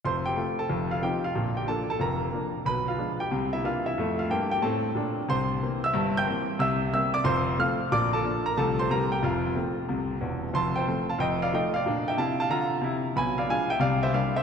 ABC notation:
X:1
M:4/4
L:1/8
Q:"Swing" 1/4=183
K:F
V:1 name="Grand piano"
[cc'] [Gg]2 [Aa]2 [Ff] [Gg] [Ff]- | [Ff] [Gg] [Aa] [Aa] [Bb]3 z | [=B=b] [Ff]2 [Gg]2 [Ee] [Ff] [Ee]- | [Ee] [Ff] [Gg] [Gg] [Aa]3 z |
[cc']3 [ee']2 [gg']3 | [ee']2 [ee'] [dd'] [cc']2 [ff']2 | [dd'] [Aa]2 [Bb] [Aa] [cc'] [Bb] [Gg] | [Ff]6 z2 |
[ac'] [cg]2 [fa] [_eg] [df] [eg] [df]- | [df] [eg] [fa] [fa] [fb]3 z | [^g=b] [df] [fg] [e=g] [df] [ce] [df] [ce] |]
V:2 name="Grand piano" clef=bass
[F,,,F,,]2 [A,CF]2 [F,,,F,,]2 [F,C_E]2 | [B,,,B,,]2 [F,B,D]2 [F,,,F,,]2 [F,B,D]2 | [=B,,,=B,,]2 [F,^G,D]2 [C,,C,]2 [E,_B,D]2 | [F,,A,]2 [G,,B,]2 [A,,C]2 [B,,D]2 |
[C,,C,]2 [E,B,C]2 [G,,,G,,]2 [E,B,C]2 | [C,,C,]2 [G,B,C]2 [F,,,F,,]2 [F,A,C]2 | [B,,,B,,]2 [F,B,D]2 [C,,C,F,A,C]2 [C,,C,E,G,C]2 | [F,,,F,,]2 [F,A,C]2 [C,,C,]2 [E,,,E,,]2 |
[F,,,F,,]2 [F,A,C]2 [F,,,F,,]2 [F,A,_E]2 | [B,,D]2 [C,E]2 [D,F]2 [C,E]2 | [=B,,,=B,,]2 [F,^G,D]2 [C,,C,]2 [=G,_B,D]2 |]